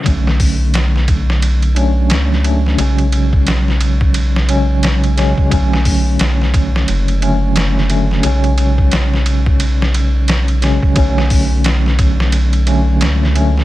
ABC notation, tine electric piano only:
X:1
M:4/4
L:1/8
Q:"Swing 16ths" 1/4=88
K:Bdor
V:1 name="Tine electric piano" clef=bass
[D,F,A,C]4- [D,F,A,C] [F,A,CD]2 [F,A,CD] | [C,F,G,C]4- [C,F,G,C] [C,F,G,C]2 [C,F,G,C] | [D,F,A,C]4- [D,F,A,C] [D,F,A,C]2 [D,F,A,C] | [C,F,G,C]4- [C,F,G,C] z2 [C,F,G,C] |
[D,F,A,C]4- [D,F,A,C] [D,F,A,C]2 [D,F,A,C] |]